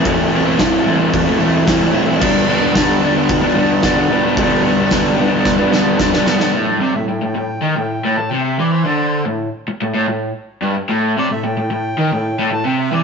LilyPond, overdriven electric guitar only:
\new Staff \with { instrumentName = "Overdriven electric guitar" } { \clef bass \time 4/4 \key a \minor \tempo 4 = 111 <a, e a c' e'>8 <e a c' e'>16 <a c' e'>16 <a, e a c' e'>8 <e a c' e'>16 <a c' e'>8 <a c' e'>16 <e a c' e'>8 <a, e a c' e'>16 <a c' e'>16 <e a c' e'>16 <a c' e'>16 | <g, d g b d'>8 <d g b d'>16 <g b d'>16 <g, d g b d'>8 <d g b d'>16 <g b d'>8 <g b d'>16 <d g b d'>8 <g, d g b d'>16 <g b d'>16 <d g b d'>16 <g b d'>16 | <g, d g b d'>8 <d g b d'>16 <g b d'>16 <g, d g b d'>8 <d g b d'>16 <g b d'>8 <g b d'>16 <d g b d'>8 <g, d g b d'>16 <g b d'>16 <d g b d'>16 <g b d'>16 | a,8 c16 a,16 a,16 a,16 a,8 dis16 a,8 a,16 a,16 c8 e16~ |
e16 d8. a,8 r8 a,16 a,16 a,8 r8 g,16 r16 | a,8 c16 a,16 a,16 a,16 a,8 dis16 a,8 a,16 a,16 c8 e16 | }